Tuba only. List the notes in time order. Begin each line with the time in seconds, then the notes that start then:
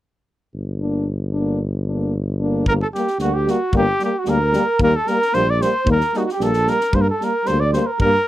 0.54 G1
2.68 G1
3.19 D2
3.74 G1
4.27 D2
4.79 D#2
5.34 A#1
5.86 D#2
6.40 A#1
6.95 G2
7.49 D2
8.00 G2